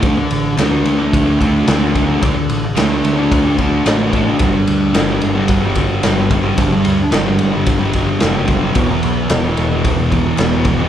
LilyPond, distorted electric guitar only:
\new Staff \with { instrumentName = "Distorted electric guitar" } { \clef bass \time 4/4 \key d \major \tempo 4 = 110 <d a d'>8. r16 <d a d'>16 <a d'>8 <a d'>8 <a d'>16 <d a d'>8 <d a d'>16 <a d'>16 <d a d'>16 <a d'>16 | <d a d'>8. r16 <d a d'>16 <a d'>8 <a d'>8 <a d'>16 <d a d'>8 <d a d'>16 <a d'>16 <d a d'>16 <a d'>16 | <g, d g>8. r16 <g, d g>16 <d g>8 <d g>8 <d g>16 <g, d g>8 <g, d g>16 <d g>16 <g, d g>16 <d g>16 | <g, d g>8. r16 <g, d g>16 <d g>8 <d g>8 <d g>16 <g, d g>8 <g, d g>16 <d g>16 <g, d g>16 <d g>16 |
<e, b, e>8. r16 <e, b, e>16 <b, e>8 <b, e>8 <b, e>16 <e, b, e>8 <e, b, e>16 <b, e>16 <e, b, e>16 <b, e>16 | }